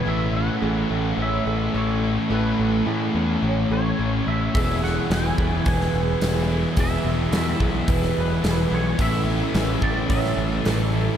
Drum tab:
HH |----------------|----------------|o---o---o---o---|o---o---o---o---|
SD |----------------|----------------|--o-o----o--o---|----o----o--o---|
BD |----------------|----------------|o-----o-o-------|o-----o-o-------|

HH |o---o---o---o---|
SD |----o----o--o---|
BD |o-----o-o-------|